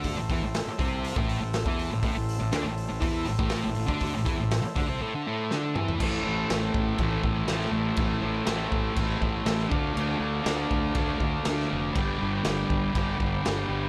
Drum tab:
CC |----------------|----------------|----------------|x---x---x---x---|
HH |o-o-o-o-o-o-o-o-|o-o-o-o-o-o-o-o-|o-o-o-o---------|----------------|
SD |----oo------o---|----o-------o---|----o-------o---|----o-------oo--|
T2 |----------------|----------------|--------------o-|----------------|
FT |----------------|----------------|---------------o|----------------|
BD |o-o---o--o---o--|o-------o--o---o|o-o---o---------|o-----o-o-o-----|

CC |x---x---x---x---|x---x---x---x---|x---x---x---x---|
HH |----------------|----------------|----------------|
SD |----o-------oo--|----o-------oo--|----o-------o---|
T2 |----------------|----------------|----------------|
FT |----------------|----------------|----------------|
BD |o-----o-o-o---o-|------o-o-o-----|o-----o-o-o-----|